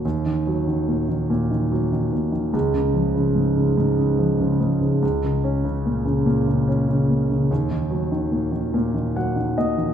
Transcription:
<<
  \new Staff \with { instrumentName = "Grand piano" } { \time 6/8 \key ees \minor \tempo 4. = 48 r2. | r2. | r2. | r2 ges''8 ees''8 | }
  \new Staff \with { instrumentName = "Grand piano" } { \clef bass \time 6/8 \key ees \minor ees,16 ees16 ges16 ees16 bes,16 ees16 bes,16 ees16 ges16 ees16 bes,16 ees16 | des,16 des16 f16 des16 aes,16 des16 aes,16 des16 f16 des16 aes,16 des16 | des,16 des16 des'16 des16 bes,16 des16 bes,16 des16 des'16 des16 bes,16 des16 | ees,16 ees16 ges16 ees16 bes,16 ees16 bes,16 ees16 ges16 ees16 bes,16 ees16 | }
>>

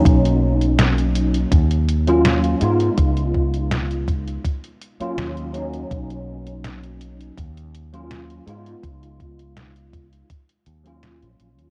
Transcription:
<<
  \new Staff \with { instrumentName = "Tine electric piano" } { \time 4/4 \key ees \minor \tempo 4 = 82 <ges bes des' ees'>2 r8. <ges bes des' f'>8. <aes ces' ees' f'>8~ | <aes ces' ees' f'>2 r8. <ges bes des' f'>8. <ges bes des' ees'>8~ | <ges bes des' ees'>2 r8. <ges bes des' f'>8. <aes ces' ees' f'>8~ | <aes ces' ees' f'>2 r8. <ges bes des' f'>4~ <ges bes des' f'>16 | }
  \new Staff \with { instrumentName = "Fretless electric bass" } { \clef bass \time 4/4 \key ees \minor b,,2 ees,4. aes,16 r16 | des,2 r4 ees,4 | b,,2 ees,4. aes,16 r16 | des,2 r8 ees,8. bes,,16 bes,,16 ees,16 | }
  \new DrumStaff \with { instrumentName = "Drums" } \drummode { \time 4/4 <hh bd>16 hh8 hh16 <hh sn>16 hh16 hh16 hh16 <hh bd>16 hh16 hh16 hh16 <hh sn>16 hh16 hh16 hh16 | <hh bd>16 hh16 bd16 hh16 <hh sn>16 hh16 <hh bd>16 hh16 <hh bd>16 hh16 hh16 hh16 <hh sn>16 hh16 hh16 hh16 | <hh bd>16 hh8 hh16 <hh sn>16 hh16 hh16 hh16 <hh bd>16 hh16 hh16 hh16 <hh sn>16 hh16 hh16 hh16 | <hh bd>16 hh16 <hh bd>16 hh16 <hh sn>16 hh16 <hh bd>16 hh16 <hh bd>16 hh16 hh16 hh16 <hh sn>16 hh16 hh16 hh16 | }
>>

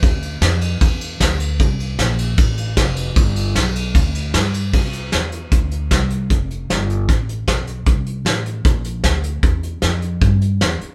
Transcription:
<<
  \new Staff \with { instrumentName = "Upright bass" } { \clef bass \time 4/4 \key c \major \tempo 4 = 153 d,4 f,4 e,4 d,4 | c,4 bes,,4 a,,4 f,,4 | g,,4 b,,4 d,4 g,4 | c,4 e,4 d,4 c,4 |
f,,4 g,,4 a,,4 b,,4 | c,4 a,,4 bes,,4 d,4 | e,4 f,4 g,4 e,8 r8 | }
  \new DrumStaff \with { instrumentName = "Drums" } \drummode { \time 4/4 <bd cymr>8 cymr8 <cymr sn>8 cymr8 <bd cymr>8 cymr8 <bd cymr sn>8 cymr8 | <bd cymr>8 cymr8 <cymr sn>8 cymr8 <bd cymr sn>8 cymr8 <bd cymr sn>8 cymr8 | <bd cymr>8 cymr8 <cymr sn>8 cymr8 <bd cymr>8 cymr8 <cymr sn>8 cymr8 | <cymc bd>8 hh8 <hh sn>8 hh8 <hh bd>8 hh8 <hh bd sn>8 hh8 |
<hh bd>8 hh8 <hh sn>8 hh8 <hh bd sn>8 hh8 <hh bd sn>8 hh8 | <hh bd>8 hh8 <hh sn>8 hh8 <hh bd>8 hh8 <hh bd sn>8 hh8 | <hh bd>8 hh8 <hh sn>8 hh8 <hh bd>8 hh8 <hh sn>8 hh8 | }
>>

